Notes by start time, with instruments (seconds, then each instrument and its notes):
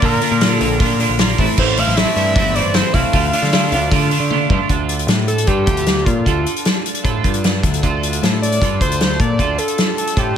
Already playing: analog synth pad F4 A#4 D5 A#5
0.02 overdriven electric guitar A#2 D3 A#3 D4 F4, picked electric bass A#2, analog synth lead A#4, kick, open hi-hat
0.21 overdriven electric guitar A#2 D3 A#3 D4 F4, open hi-hat
0.32 picked electric bass A#2
0.41 overdriven electric guitar A#2 D3 A#3 D4 F4, snare, open hi-hat
0.55 analog synth lead A4
0.60 picked electric bass A#1, overdriven electric guitar A#2 D3 A#3 D4 F4, open hi-hat
0.79 overdriven electric guitar A#2 D3 A#3 D4 F4, picked electric bass A#2, kick, open hi-hat
0.99 overdriven electric guitar A#2 D3 A#3 D4 F4, open hi-hat
1.09 picked electric bass A#1
1.19 overdriven electric guitar A#2 D3 A#3 D4 F4, snare, open hi-hat
1.38 picked electric bass A1, overdriven electric guitar A2 E3 A3 C4 E4, analog synth pad E4 A4 C5 A5, kick, open hi-hat
1.58 picked electric bass A1, overdriven electric guitar A2 E3 A3 C4 E4, analog synth lead C5, kick, crash
1.77 overdriven electric guitar A2 E3 A3 C4 E4, analog synth lead F5, open hi-hat
1.87 picked electric bass A1, snare
1.96 overdriven electric guitar A2 E3 A3 C4 E4, analog synth lead E5, snare, open hi-hat
2.16 picked electric bass G2, overdriven electric guitar A2 E3 A3 C4 E4, analog synth lead E5, open hi-hat
2.36 picked electric bass G1, overdriven electric guitar A2 E3 A3 C4 E4, kick, open hi-hat
2.55 overdriven electric guitar A2 E3 A3 C4 E4, analog synth lead D5, open hi-hat
2.64 picked electric bass G1
2.74 overdriven electric guitar A2 E3 A3 C4 E4, analog synth lead C5, snare, open hi-hat
2.93 picked electric bass C2, overdriven electric guitar A2 E3 A3 C4 E4, analog synth lead F5, kick, open hi-hat
3.12 picked electric bass D2, overdriven electric guitar D3 A3 D4 F4, analog synth pad F4 D5 A5, kick, open hi-hat
3.33 overdriven electric guitar D3 A3 D4 F4, open hi-hat
3.42 picked electric bass D3, snare
3.52 overdriven electric guitar D3 A3 D4 F4, snare, open hi-hat
3.71 picked electric bass D2, overdriven electric guitar D3 A3 D4 F4, open hi-hat
3.91 overdriven electric guitar D3 A3 D4 F4, picked electric bass D3, kick, open hi-hat
4.11 overdriven electric guitar D3 A3 D4 F4, open hi-hat
4.20 picked electric bass D3
4.30 overdriven electric guitar D3 A3 D4 F4, high tom
4.50 picked electric bass G2, overdriven electric guitar D3 A3 D4 F4, kick
4.68 picked electric bass D2, overdriven electric guitar D3 D4 F4 A4, analog synth pad F4 A4 D5 A5, kick, closed hi-hat
4.89 closed hi-hat
4.99 closed hi-hat
5.08 picked electric bass A2, clean electric guitar A3, snare, closed hi-hat
5.28 analog synth lead A4, closed hi-hat
5.38 closed hi-hat
5.46 picked electric bass G2, overdriven electric guitar D3 D4 F4 A4, clean electric guitar G3, analog synth lead G4, kick, closed hi-hat
5.66 picked electric bass D2, clean electric guitar D3, analog synth lead G4, kick, closed hi-hat
5.77 closed hi-hat
5.86 snare, closed hi-hat
6.05 picked electric bass A#2, clean electric guitar A#3, analog synth lead F4, kick, closed hi-hat
6.25 picked electric bass D2, overdriven electric guitar D3 D4 F4 A4, kick, closed hi-hat
6.46 closed hi-hat
6.56 closed hi-hat
6.65 snare, closed hi-hat
6.86 closed hi-hat
6.95 closed hi-hat
7.03 picked electric bass A2, overdriven electric guitar D3 D4 F4 A4, clean electric guitar A3, kick, closed hi-hat
7.24 picked electric bass G2, clean electric guitar G3, kick, closed hi-hat
7.34 closed hi-hat
7.44 snare, closed hi-hat
7.62 picked electric bass D2, clean electric guitar D3, kick, snare, closed hi-hat
7.74 closed hi-hat
7.82 picked electric bass D2, overdriven electric guitar D3 D4 F4 A4, kick, closed hi-hat
8.03 closed hi-hat
8.13 closed hi-hat
8.22 picked electric bass A2, clean electric guitar A3, snare, closed hi-hat
8.42 analog synth lead D5, closed hi-hat
8.52 closed hi-hat
8.61 picked electric bass G2, overdriven electric guitar D3 D4 F4 A4, clean electric guitar G3, kick, closed hi-hat
8.81 picked electric bass D2, clean electric guitar D3, analog synth lead C5, kick, closed hi-hat
8.92 closed hi-hat
9.00 snare, closed hi-hat
9.20 picked electric bass A#2, clean electric guitar A#3, analog synth lead D5, kick, closed hi-hat
9.38 picked electric bass D2, overdriven electric guitar D3 D4 F4 A4, kick, closed hi-hat
9.58 analog synth lead A4, closed hi-hat
9.68 closed hi-hat
9.78 snare, closed hi-hat
9.98 analog synth lead A4, closed hi-hat
10.07 closed hi-hat
10.15 picked electric bass A2, overdriven electric guitar D3 D4 F4 A4, clean electric guitar A3, analog synth lead G4, kick, closed hi-hat